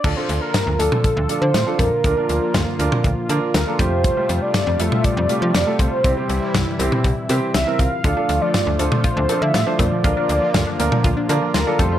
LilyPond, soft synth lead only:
\new Staff \with { instrumentName = "Soft synth lead" } { \time 4/4 \key d \minor \tempo 4 = 120 d''16 c''8 bes'8. a'8 a'8. c''8. bes'8~ | bes'2~ bes'8 r8 bes'8 c''8~ | c''8. d''8. e''8 d''4. c''8~ | c''4 r2 e''8 f''8~ |
f''8. d''8. c''8 c''8. e''8. d''8~ | d''2~ d''8 r8 bes'8 c''8 | }